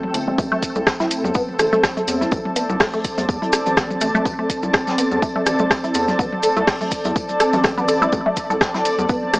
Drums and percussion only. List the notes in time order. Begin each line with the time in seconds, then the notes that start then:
0.03 high tom
0.14 closed hi-hat, tambourine
0.28 high tom, low conga
0.38 kick, tambourine, maracas
0.52 high tom
0.62 kick, closed hi-hat, tambourine, maracas
0.75 high tom, maracas
0.87 kick, cross-stick, snare, tambourine, maracas
1.00 snare, high tom, maracas
1.11 closed hi-hat, tambourine, maracas
1.24 high tom, maracas
1.34 kick, tambourine, maracas
1.49 high tom
1.59 cross-stick, closed hi-hat, tambourine, maracas
1.73 high tom, low conga, maracas
1.83 kick, cross-stick, snare, tambourine, maracas
1.97 closed hi-hat, high tom, maracas
2.07 closed hi-hat, tambourine, maracas
2.21 snare, high tom, maracas
2.31 kick, tambourine, maracas
2.45 high tom
2.56 closed hi-hat, tambourine, maracas
2.70 high tom, maracas
2.80 kick, cross-stick, snare, open hi-hat, maracas
2.93 high tom, maracas
3.04 kick, closed hi-hat, tambourine, maracas
3.18 closed hi-hat, high tom, maracas
3.29 kick, tambourine, maracas
3.42 closed hi-hat, high tom
3.53 cross-stick, closed hi-hat, tambourine, maracas
3.66 closed hi-hat, high tom, maracas
3.77 kick, cross-stick, snare, tambourine, maracas
3.90 high tom, maracas
4.01 closed hi-hat, tambourine, maracas
4.15 high tom, low conga, maracas
4.25 kick, tambourine, maracas
4.39 high tom
4.50 kick, closed hi-hat, tambourine, maracas
4.63 high tom, maracas
4.73 kick, cross-stick, snare, tambourine, maracas
4.87 snare, high tom, maracas
4.98 closed hi-hat, tambourine, maracas
5.11 high tom, maracas
5.22 kick, tambourine, maracas
5.36 high tom
5.46 cross-stick, closed hi-hat, tambourine, maracas
5.59 high tom, low conga, maracas
5.71 kick, cross-stick, snare, tambourine, maracas
5.84 closed hi-hat, high tom, maracas
5.94 closed hi-hat, tambourine, maracas
6.08 snare, high tom, maracas
6.19 kick, tambourine, maracas
6.32 high tom
6.43 closed hi-hat, tambourine, maracas
6.57 high tom, maracas
6.67 kick, cross-stick, snare, open hi-hat, maracas
6.81 high tom, maracas
6.91 kick, closed hi-hat, tambourine, maracas
7.04 closed hi-hat, high tom, maracas
7.16 kick, tambourine, maracas
7.29 closed hi-hat, high tom, maracas
7.40 cross-stick, closed hi-hat, tambourine, maracas
7.53 closed hi-hat, high tom, maracas
7.64 kick, cross-stick, snare, tambourine, maracas
7.78 high tom, maracas
7.88 closed hi-hat, tambourine, maracas
8.02 high tom, low conga, maracas
8.12 kick, tambourine, maracas
8.26 high tom
8.36 kick, closed hi-hat, tambourine, maracas
8.50 high tom, maracas
8.61 kick, cross-stick, snare, tambourine, maracas
8.74 snare, high tom, maracas
8.85 closed hi-hat, tambourine, maracas
8.99 high tom, maracas
9.09 kick, tambourine, maracas
9.23 high tom
9.34 cross-stick, closed hi-hat, tambourine, maracas